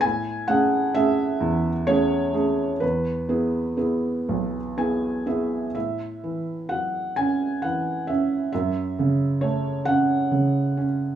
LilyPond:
\new Staff \with { instrumentName = "Felt piano" } { \time 6/8 \key a \major \tempo 4. = 43 << { gis''8 fis''8 e''4 cis''4 | b'2 gis''8 e''8 | e''4 fis''8 gis''8 fis''8 e''8 | e''4 cis''8 fis''4 r8 | } \\ { a,8 <a cis' gis'>8 <a cis' gis'>8 e,8 <a cis' gis'>8 <a cis' gis'>8 | e,8 <b e' gis'>8 <b e' gis'>8 b,,8 <b e' gis'>8 <b e' gis'>8 | a,8 e8 fis8 cis'8 e8 cis'8 | fis,8 cis8 a8 cis'8 cis8 cis'8 | } >> }